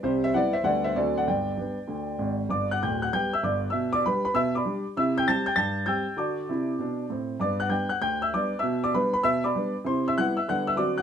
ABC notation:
X:1
M:4/4
L:1/16
Q:"Swing" 1/4=195
K:G
V:1 name="Grand piano"
[Gc]2 [ce]2 [df]2 [ce]2 [df]2 [ce]2 [Ad]2 [df]2 | [dg]12- [dg]2 z2 | [dd']2 [ff']2 [gg']2 [ff']2 [gg']2 [ee']2 [dd']3 [ee']- | [ee']2 [dd']2 [Bb]2 [Bb]2 [ee']2 [dbd']4 z2 |
[ee']2 [gg']2 [aa']2 [gg']2 [aa']4 [ge'g']4 | [dad']12 z4 | [dd']2 [ff']2 [gg']2 [ff']2 [gg']2 [ee']2 [dd']3 [ee']- | [ee']2 [dd']2 [Bb]2 [Bb]2 [ee']2 [dbd']4 z2 |
[cc']2 [ee']2 [ff']2 [ee']2 [ff']2 [ee']2 [dd']2 [ff']2 |]
V:2 name="Grand piano" clef=bass
[C,,C,]4 [G,B,E]4 [D,,D,G,B,D]4 [D,,D,F,CD]4 | [G,,,G,,]4 [G,B,D]4 [D,,D,]4 [_A,,,_A,,]4 | [G,,,G,,]4 [D,,,D,,]4 [G,B,G]4 [G,,,G,,]4 | B,,4 [G,DG]4 B,,4 [G,DG]4 |
[C,E]4 [G,CG]4 G,,4 [G,CG]4 | [D,F]4 [C,E]4 [B,,D]4 [A,,C]4 | [G,,B,]4 [G,B,D]4 D,,4 [G,B,D]4 | B,,4 [G,B,D]4 B,,4 [G,B,D]4 |
[C,E]4 [G,B,E]4 [D,G,B,D]4 [D,F,CDF]4 |]